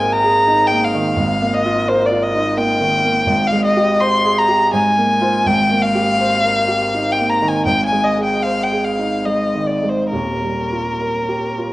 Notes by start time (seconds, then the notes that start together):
Already playing: G#1 G#2 A#3 G#4 C5 G#5
0.01 A#4
0.13 A#5
0.24 G#4
0.47 D#4
0.67 G5
0.72 A#3
0.84 F5
0.95 D#3
1.16 G#1 G#2
1.42 A#3
1.54 D#5
1.65 F4
1.89 A#4 C5
2.06 D5
2.11 F4
2.23 D#5
2.35 D#4
2.57 A#3 G5
2.81 D#3
3.05 A#3
3.26 G#1 G#2
3.47 F5
3.52 G#3
3.65 D#5
3.77 G4
4.01 C5 C6
4.25 G#4
4.38 A#5
4.49 G4
4.73 G#2 G#5
4.98 A#3
5.21 F4 C5
5.46 G#1 G#2 G5
5.71 A#3
5.82 F5
5.95 G4
6.20 C5
6.44 A#4
6.68 G4
6.94 D#4
7.12 G5
7.19 A#3
7.30 A#5
7.42 D#3
7.48 G#5
7.65 G#1 G#2 G5
7.85 G#5
7.92 G#3
8.04 D#5
8.18 G#4
8.23 G5
8.43 C5 F5
8.64 G5
8.72 G#4
8.84 F5
8.99 D#4
9.25 G#3 D#5
9.55 D#3
9.66 D5
9.83 G#3
9.89 C5
10.09 D#1 D#2 A#4
10.42 G3
10.72 F4
11.01 A#4
11.29 G4
11.58 F4